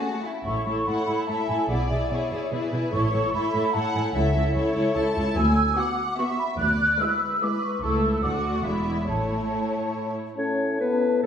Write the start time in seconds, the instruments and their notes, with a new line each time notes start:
Already playing: cello section A3, violin section A5
0.00 viola section A3 C#4, violin section F#4
0.24 violin section E4
0.45 double bass section A1, cello section A2, viola section E4 A4, violin section C#5, flute section C#6
0.66 cello section A2, viola section E4 A4, violin section C#5
0.87 cello section A2, viola section E4 A4, violin section C#5 F#5, flute section B5
1.07 cello section A2, viola section E4 A4, violin section C#5
1.28 cello section A2, viola section E4 A4, violin section C#5 E5, flute section A5
1.48 cello section A2, viola section E4 A4, violin section C#5, flute section G#5
1.69 double bass section B1, cello section B2, viola section E4 G#4, violin section D5, flute section F#5
1.90 cello section B2, viola section E4 G#4, violin section D5, flute section E5
2.11 cello section B2, viola section E4 G#4, violin section C#5 D5
2.31 cello section B2, viola section E4 G#4, violin section D5
2.51 cello section B2, viola section E4 G#4, violin section B4 D5
2.72 cello section B2, viola section E4 G#4, violin section D5
2.92 double bass section A1, cello section A2, viola section E4 A4, violin section C#5, flute section C#6
3.13 cello section A2, viola section E4 A4, violin section C#5
3.33 cello section A2, viola section E4 A4, violin section C#5 E5, flute section B5
3.54 cello section A2, viola section E4 A4, violin section C#5
3.74 cello section A2, viola section E4 A4, violin section C#5 F#5, flute section A5
3.95 cello section A2, viola section E4 A4, violin section C#5, flute section G#5
4.14 cello section C#2, double bass section C#2, viola section E4 A4, violin section C#5 E5, flute section F#5
4.35 cello section C#2, viola section E4 A4, violin section C#5, flute section E5
4.55 cello section C#2, viola section E4 A4, violin section C#5
4.75 cello section C#2, viola section E4 A4, violin section C#5
4.95 cello section C#2, viola section E4 A4, violin section C#5 A5
5.15 cello section C#2, viola section E4 A4, violin section C#5
5.37 cello section D2, double bass section D2, violin section G#5, flute section E6
5.77 viola section B3 F#4, violin section B4 F#5, flute section D6
6.18 viola section B3 F#4, violin section B4 E5, flute section C#6
6.39 flute section B5
6.59 cello section D2, double bass section D2, violin section D5, flute section F#6
7.01 viola section G#3 E4, violin section B4, flute section E6
7.42 viola section G#3 E4, violin section B4, flute section D6
7.65 flute section C#6
7.83 cello section C#2, double bass section C#2, viola section A3 E4, violin section A4, flute section E6
8.23 cello section D2, double bass section D2, viola section A3 F#4, violin section D5 F#5, flute section D6
8.55 flute section C#6
8.65 double bass section E1, cello section E2, viola section G#3 E4, violin section D5 E5, flute section B5
9.08 double bass section A1, cello section A2, viola section A3 E4, violin section C#5, flute section A5
10.37 bassoon A2, french horn section C#4, clarinet C#5, flute section A5
10.80 french horn section B3, clarinet B4
11.23 clarinet A4, flute section A5